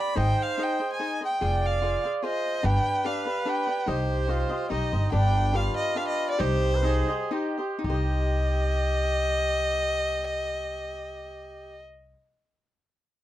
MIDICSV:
0, 0, Header, 1, 5, 480
1, 0, Start_track
1, 0, Key_signature, -3, "minor"
1, 0, Tempo, 412088
1, 192, Time_signature, 3, 2, 24, 8
1, 4988, Tempo, 419874
1, 6908, Tempo, 440529
1, 7868, Tempo, 483871
1, 8348, Tempo, 525394
1, 10268, Tempo, 535714
1, 13679, End_track
2, 0, Start_track
2, 0, Title_t, "Violin"
2, 0, Program_c, 0, 40
2, 0, Note_on_c, 0, 83, 94
2, 212, Note_off_c, 0, 83, 0
2, 234, Note_on_c, 0, 79, 99
2, 492, Note_on_c, 0, 77, 91
2, 509, Note_off_c, 0, 79, 0
2, 728, Note_on_c, 0, 79, 86
2, 745, Note_off_c, 0, 77, 0
2, 1077, Note_off_c, 0, 79, 0
2, 1087, Note_on_c, 0, 80, 81
2, 1413, Note_off_c, 0, 80, 0
2, 1454, Note_on_c, 0, 79, 83
2, 1926, Note_on_c, 0, 77, 83
2, 1943, Note_off_c, 0, 79, 0
2, 2384, Note_off_c, 0, 77, 0
2, 2619, Note_on_c, 0, 75, 89
2, 3083, Note_on_c, 0, 79, 106
2, 3100, Note_off_c, 0, 75, 0
2, 3562, Note_on_c, 0, 77, 84
2, 3580, Note_off_c, 0, 79, 0
2, 4062, Note_on_c, 0, 79, 81
2, 4079, Note_off_c, 0, 77, 0
2, 4526, Note_on_c, 0, 72, 77
2, 4543, Note_off_c, 0, 79, 0
2, 5469, Note_off_c, 0, 72, 0
2, 5476, Note_on_c, 0, 75, 75
2, 5922, Note_off_c, 0, 75, 0
2, 5955, Note_on_c, 0, 79, 95
2, 6440, Note_on_c, 0, 77, 91
2, 6457, Note_off_c, 0, 79, 0
2, 6683, Note_off_c, 0, 77, 0
2, 6690, Note_on_c, 0, 75, 89
2, 6917, Note_on_c, 0, 77, 92
2, 6934, Note_off_c, 0, 75, 0
2, 7034, Note_off_c, 0, 77, 0
2, 7041, Note_on_c, 0, 75, 89
2, 7254, Note_off_c, 0, 75, 0
2, 7283, Note_on_c, 0, 74, 96
2, 7389, Note_on_c, 0, 72, 105
2, 7406, Note_off_c, 0, 74, 0
2, 8354, Note_off_c, 0, 72, 0
2, 8837, Note_on_c, 0, 75, 99
2, 12398, Note_off_c, 0, 75, 0
2, 13679, End_track
3, 0, Start_track
3, 0, Title_t, "Cavaquinho"
3, 0, Program_c, 1, 24
3, 0, Note_on_c, 1, 67, 31
3, 0, Note_on_c, 1, 71, 33
3, 0, Note_on_c, 1, 74, 39
3, 176, Note_off_c, 1, 67, 0
3, 179, Note_off_c, 1, 71, 0
3, 179, Note_on_c, 1, 63, 63
3, 180, Note_on_c, 1, 68, 62
3, 184, Note_off_c, 1, 74, 0
3, 184, Note_on_c, 1, 72, 56
3, 190, Note_on_c, 1, 75, 69
3, 657, Note_off_c, 1, 63, 0
3, 671, Note_on_c, 1, 63, 64
3, 674, Note_off_c, 1, 75, 0
3, 677, Note_off_c, 1, 68, 0
3, 682, Note_on_c, 1, 68, 58
3, 683, Note_off_c, 1, 72, 0
3, 687, Note_on_c, 1, 72, 56
3, 688, Note_on_c, 1, 75, 67
3, 913, Note_off_c, 1, 75, 0
3, 917, Note_off_c, 1, 72, 0
3, 924, Note_off_c, 1, 68, 0
3, 927, Note_on_c, 1, 75, 38
3, 931, Note_on_c, 1, 72, 47
3, 933, Note_off_c, 1, 63, 0
3, 938, Note_on_c, 1, 68, 31
3, 1151, Note_off_c, 1, 68, 0
3, 1155, Note_off_c, 1, 72, 0
3, 1158, Note_on_c, 1, 63, 61
3, 1165, Note_off_c, 1, 75, 0
3, 1165, Note_on_c, 1, 68, 54
3, 1169, Note_on_c, 1, 72, 64
3, 1180, Note_on_c, 1, 75, 73
3, 1394, Note_off_c, 1, 75, 0
3, 1403, Note_off_c, 1, 72, 0
3, 1408, Note_on_c, 1, 75, 34
3, 1415, Note_off_c, 1, 68, 0
3, 1416, Note_off_c, 1, 63, 0
3, 1417, Note_on_c, 1, 72, 36
3, 1429, Note_on_c, 1, 68, 31
3, 1629, Note_off_c, 1, 68, 0
3, 1634, Note_off_c, 1, 72, 0
3, 1642, Note_on_c, 1, 65, 62
3, 1643, Note_off_c, 1, 75, 0
3, 1643, Note_on_c, 1, 68, 70
3, 1648, Note_on_c, 1, 72, 56
3, 1657, Note_on_c, 1, 77, 74
3, 2103, Note_off_c, 1, 65, 0
3, 2116, Note_off_c, 1, 68, 0
3, 2117, Note_on_c, 1, 65, 54
3, 2122, Note_off_c, 1, 72, 0
3, 2123, Note_off_c, 1, 77, 0
3, 2130, Note_on_c, 1, 68, 59
3, 2134, Note_on_c, 1, 72, 60
3, 2137, Note_on_c, 1, 77, 66
3, 2357, Note_off_c, 1, 77, 0
3, 2364, Note_off_c, 1, 72, 0
3, 2367, Note_off_c, 1, 65, 0
3, 2371, Note_on_c, 1, 77, 39
3, 2373, Note_off_c, 1, 68, 0
3, 2378, Note_on_c, 1, 72, 41
3, 2392, Note_on_c, 1, 68, 37
3, 2587, Note_off_c, 1, 68, 0
3, 2590, Note_off_c, 1, 72, 0
3, 2591, Note_on_c, 1, 65, 60
3, 2597, Note_off_c, 1, 77, 0
3, 2601, Note_on_c, 1, 68, 57
3, 2604, Note_on_c, 1, 72, 61
3, 2615, Note_on_c, 1, 77, 67
3, 3056, Note_off_c, 1, 65, 0
3, 3060, Note_off_c, 1, 68, 0
3, 3061, Note_on_c, 1, 62, 50
3, 3062, Note_off_c, 1, 72, 0
3, 3065, Note_on_c, 1, 67, 65
3, 3066, Note_on_c, 1, 71, 56
3, 3071, Note_off_c, 1, 77, 0
3, 3076, Note_on_c, 1, 74, 76
3, 3529, Note_off_c, 1, 62, 0
3, 3537, Note_off_c, 1, 71, 0
3, 3542, Note_off_c, 1, 67, 0
3, 3543, Note_on_c, 1, 62, 62
3, 3547, Note_on_c, 1, 67, 63
3, 3550, Note_off_c, 1, 74, 0
3, 3551, Note_on_c, 1, 71, 56
3, 3565, Note_on_c, 1, 74, 74
3, 3778, Note_off_c, 1, 74, 0
3, 3789, Note_off_c, 1, 71, 0
3, 3792, Note_off_c, 1, 67, 0
3, 3792, Note_on_c, 1, 74, 48
3, 3796, Note_off_c, 1, 62, 0
3, 3803, Note_on_c, 1, 71, 43
3, 3806, Note_on_c, 1, 67, 40
3, 4015, Note_off_c, 1, 67, 0
3, 4023, Note_off_c, 1, 71, 0
3, 4023, Note_on_c, 1, 62, 59
3, 4024, Note_off_c, 1, 74, 0
3, 4029, Note_on_c, 1, 67, 62
3, 4037, Note_on_c, 1, 71, 67
3, 4044, Note_on_c, 1, 74, 56
3, 4261, Note_off_c, 1, 74, 0
3, 4275, Note_off_c, 1, 71, 0
3, 4275, Note_on_c, 1, 74, 42
3, 4276, Note_off_c, 1, 62, 0
3, 4279, Note_off_c, 1, 67, 0
3, 4289, Note_on_c, 1, 71, 39
3, 4299, Note_on_c, 1, 67, 32
3, 4490, Note_off_c, 1, 67, 0
3, 4498, Note_on_c, 1, 63, 57
3, 4504, Note_on_c, 1, 67, 59
3, 4505, Note_off_c, 1, 71, 0
3, 4506, Note_off_c, 1, 74, 0
3, 4509, Note_on_c, 1, 72, 69
3, 4514, Note_on_c, 1, 75, 67
3, 4965, Note_off_c, 1, 63, 0
3, 4979, Note_on_c, 1, 63, 53
3, 4981, Note_off_c, 1, 72, 0
3, 4981, Note_off_c, 1, 75, 0
3, 4982, Note_off_c, 1, 67, 0
3, 4987, Note_on_c, 1, 67, 58
3, 4995, Note_on_c, 1, 72, 51
3, 4995, Note_on_c, 1, 75, 61
3, 5216, Note_off_c, 1, 75, 0
3, 5230, Note_on_c, 1, 75, 50
3, 5231, Note_off_c, 1, 72, 0
3, 5232, Note_off_c, 1, 63, 0
3, 5236, Note_off_c, 1, 67, 0
3, 5245, Note_on_c, 1, 72, 53
3, 5252, Note_on_c, 1, 67, 39
3, 5455, Note_off_c, 1, 67, 0
3, 5463, Note_on_c, 1, 63, 72
3, 5464, Note_off_c, 1, 72, 0
3, 5465, Note_off_c, 1, 75, 0
3, 5469, Note_on_c, 1, 67, 53
3, 5478, Note_on_c, 1, 72, 67
3, 5485, Note_on_c, 1, 75, 60
3, 5701, Note_off_c, 1, 75, 0
3, 5708, Note_off_c, 1, 72, 0
3, 5715, Note_on_c, 1, 75, 34
3, 5719, Note_off_c, 1, 67, 0
3, 5720, Note_off_c, 1, 63, 0
3, 5722, Note_on_c, 1, 72, 42
3, 5733, Note_on_c, 1, 67, 30
3, 5930, Note_off_c, 1, 67, 0
3, 5943, Note_off_c, 1, 72, 0
3, 5943, Note_on_c, 1, 62, 69
3, 5944, Note_on_c, 1, 67, 59
3, 5946, Note_off_c, 1, 75, 0
3, 5948, Note_on_c, 1, 71, 66
3, 5950, Note_on_c, 1, 74, 75
3, 6394, Note_off_c, 1, 62, 0
3, 6407, Note_on_c, 1, 62, 58
3, 6414, Note_off_c, 1, 71, 0
3, 6415, Note_off_c, 1, 67, 0
3, 6417, Note_off_c, 1, 74, 0
3, 6420, Note_on_c, 1, 67, 63
3, 6428, Note_on_c, 1, 71, 66
3, 6431, Note_on_c, 1, 74, 69
3, 6880, Note_off_c, 1, 62, 0
3, 6894, Note_off_c, 1, 71, 0
3, 6894, Note_on_c, 1, 62, 60
3, 6899, Note_off_c, 1, 67, 0
3, 6902, Note_off_c, 1, 74, 0
3, 6903, Note_on_c, 1, 67, 65
3, 6908, Note_on_c, 1, 71, 83
3, 6916, Note_on_c, 1, 74, 73
3, 7363, Note_off_c, 1, 62, 0
3, 7365, Note_off_c, 1, 67, 0
3, 7367, Note_on_c, 1, 63, 62
3, 7368, Note_off_c, 1, 71, 0
3, 7369, Note_on_c, 1, 67, 82
3, 7372, Note_on_c, 1, 72, 71
3, 7376, Note_off_c, 1, 74, 0
3, 7380, Note_on_c, 1, 75, 72
3, 7847, Note_off_c, 1, 63, 0
3, 7851, Note_on_c, 1, 63, 65
3, 7853, Note_off_c, 1, 67, 0
3, 7857, Note_on_c, 1, 67, 66
3, 7859, Note_off_c, 1, 72, 0
3, 7863, Note_off_c, 1, 75, 0
3, 7864, Note_on_c, 1, 72, 62
3, 7868, Note_on_c, 1, 75, 67
3, 8090, Note_off_c, 1, 75, 0
3, 8096, Note_off_c, 1, 72, 0
3, 8102, Note_on_c, 1, 75, 60
3, 8106, Note_off_c, 1, 63, 0
3, 8106, Note_off_c, 1, 67, 0
3, 8108, Note_on_c, 1, 72, 56
3, 8118, Note_on_c, 1, 67, 44
3, 8326, Note_off_c, 1, 67, 0
3, 8326, Note_off_c, 1, 72, 0
3, 8330, Note_on_c, 1, 63, 70
3, 8335, Note_off_c, 1, 75, 0
3, 8337, Note_on_c, 1, 67, 60
3, 8338, Note_on_c, 1, 72, 66
3, 8347, Note_on_c, 1, 75, 68
3, 8563, Note_off_c, 1, 75, 0
3, 8571, Note_off_c, 1, 72, 0
3, 8574, Note_on_c, 1, 75, 38
3, 8578, Note_off_c, 1, 67, 0
3, 8582, Note_on_c, 1, 72, 46
3, 8584, Note_off_c, 1, 63, 0
3, 8589, Note_on_c, 1, 67, 39
3, 8767, Note_on_c, 1, 63, 66
3, 8810, Note_off_c, 1, 67, 0
3, 8814, Note_off_c, 1, 75, 0
3, 8818, Note_off_c, 1, 72, 0
3, 8821, Note_on_c, 1, 67, 59
3, 8869, Note_on_c, 1, 72, 77
3, 8906, Note_on_c, 1, 75, 58
3, 12671, Note_off_c, 1, 63, 0
3, 12724, Note_off_c, 1, 67, 0
3, 12770, Note_off_c, 1, 72, 0
3, 12807, Note_off_c, 1, 75, 0
3, 13679, End_track
4, 0, Start_track
4, 0, Title_t, "Trumpet"
4, 0, Program_c, 2, 56
4, 0, Note_on_c, 2, 74, 94
4, 178, Note_on_c, 2, 72, 112
4, 196, Note_off_c, 2, 74, 0
4, 1341, Note_off_c, 2, 72, 0
4, 1653, Note_on_c, 2, 74, 106
4, 2602, Note_on_c, 2, 72, 84
4, 2619, Note_off_c, 2, 74, 0
4, 3082, Note_on_c, 2, 71, 98
4, 3099, Note_off_c, 2, 72, 0
4, 4523, Note_on_c, 2, 67, 92
4, 4540, Note_off_c, 2, 71, 0
4, 5005, Note_on_c, 2, 65, 88
4, 5022, Note_off_c, 2, 67, 0
4, 5467, Note_on_c, 2, 63, 67
4, 5484, Note_off_c, 2, 65, 0
4, 5952, Note_off_c, 2, 63, 0
4, 5965, Note_on_c, 2, 62, 88
4, 6437, Note_on_c, 2, 65, 82
4, 6454, Note_off_c, 2, 62, 0
4, 7370, Note_off_c, 2, 65, 0
4, 7377, Note_on_c, 2, 67, 107
4, 7780, Note_on_c, 2, 71, 71
4, 7797, Note_off_c, 2, 67, 0
4, 7861, Note_on_c, 2, 68, 95
4, 7877, Note_off_c, 2, 71, 0
4, 8351, Note_on_c, 2, 67, 82
4, 8365, Note_off_c, 2, 68, 0
4, 8821, Note_off_c, 2, 67, 0
4, 8826, Note_on_c, 2, 67, 75
4, 12393, Note_off_c, 2, 67, 0
4, 13679, End_track
5, 0, Start_track
5, 0, Title_t, "Upright bass"
5, 0, Program_c, 3, 32
5, 198, Note_on_c, 3, 32, 88
5, 363, Note_off_c, 3, 32, 0
5, 1652, Note_on_c, 3, 29, 81
5, 2267, Note_off_c, 3, 29, 0
5, 3077, Note_on_c, 3, 31, 105
5, 3236, Note_off_c, 3, 31, 0
5, 4515, Note_on_c, 3, 36, 88
5, 5141, Note_off_c, 3, 36, 0
5, 5477, Note_on_c, 3, 35, 67
5, 5702, Note_off_c, 3, 35, 0
5, 5726, Note_on_c, 3, 31, 84
5, 5932, Note_off_c, 3, 31, 0
5, 5961, Note_on_c, 3, 31, 91
5, 6579, Note_off_c, 3, 31, 0
5, 7384, Note_on_c, 3, 36, 110
5, 8028, Note_off_c, 3, 36, 0
5, 8819, Note_on_c, 3, 36, 87
5, 12685, Note_off_c, 3, 36, 0
5, 13679, End_track
0, 0, End_of_file